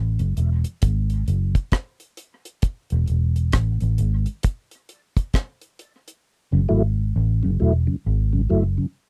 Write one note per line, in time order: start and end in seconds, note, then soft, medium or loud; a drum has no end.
0.00 0.17 A1 medium
0.19 0.35 F#1 medium
0.19 0.27 F#2 medium
0.19 0.27 C#3 medium
0.19 closed hi-hat medium
0.37 0.63 E1 medium
0.37 0.50 F#3 medium
0.37 0.50 A3 medium
0.37 0.50 E4 medium
0.37 closed hi-hat medium
0.64 0.73 F#2 medium
0.64 0.73 C#3 medium
0.64 closed hi-hat medium
0.82 1.24 G#1 loud
0.82 kick medium
0.82 closed hi-hat medium
1.10 1.18 C#3 medium
1.10 closed hi-hat medium
1.26 1.53 F#1 medium
1.26 1.40 F#3 medium
1.26 1.40 A3 medium
1.26 1.40 E4 medium
1.26 closed hi-hat medium
1.55 kick medium
1.55 closed hi-hat medium
1.72 kick loud
1.72 cross-stick loud
1.72 closed hi-hat medium
2.00 closed hi-hat medium
2.17 2.31 F#3 medium
2.17 2.31 A3 medium
2.17 2.31 E4 medium
2.17 closed hi-hat medium
2.45 closed hi-hat medium
2.62 kick loud
2.62 closed hi-hat medium
2.90 3.08 E1 medium
2.90 closed hi-hat medium
3.06 3.50 E1 medium
3.06 3.20 E3 medium
3.06 3.20 A3 medium
3.06 3.21 D4 medium
3.06 closed hi-hat medium
3.36 closed hi-hat medium
3.52 3.79 A1 medium
3.52 kick loud
3.52 cross-stick loud
3.52 closed hi-hat medium
3.80 3.98 A1 medium
3.80 closed hi-hat medium
3.98 4.25 G#1 medium
3.98 4.12 E3 medium
3.98 4.12 A3 medium
3.98 4.12 D4 medium
3.98 closed hi-hat medium
4.26 closed hi-hat medium
4.43 kick loud
4.43 closed hi-hat loud
4.71 closed hi-hat medium
4.89 5.02 E3 medium
4.89 5.02 A3 medium
4.89 5.02 D4 medium
4.89 closed hi-hat medium
5.17 kick loud
5.17 closed hi-hat medium
5.34 kick loud
5.34 cross-stick loud
5.34 closed hi-hat medium
5.61 5.70 E2 medium
5.61 5.70 B2 medium
5.61 closed hi-hat medium
5.79 5.92 E3 medium
5.79 5.93 A3 medium
5.79 5.93 D4 medium
5.79 closed hi-hat medium
6.07 6.16 E2 medium
6.07 6.16 B2 medium
6.07 closed hi-hat medium
6.52 6.69 F#1 medium
6.52 6.61 F#2 medium
6.52 6.61 C#3 medium
6.69 7.12 G#1 medium
6.69 6.82 F#3 medium
6.69 6.82 A3 medium
6.69 6.82 E4 medium
7.16 7.41 A1 medium
7.43 7.60 F#1 medium
7.43 7.51 F#2 medium
7.43 7.51 C#3 medium
7.60 7.87 E1 medium
7.60 7.73 F#3 medium
7.60 7.73 A3 medium
7.60 7.73 E4 medium
7.87 7.96 F#2 medium
7.87 7.96 C#3 medium
8.06 8.48 G#1 loud
8.33 8.41 F#2 medium
8.33 8.41 C#3 medium
8.50 8.77 F#1 medium
8.50 8.63 F#3 medium
8.50 8.64 A3 medium
8.50 8.64 E4 medium
8.78 8.87 F#2 medium
8.78 8.86 C#3 medium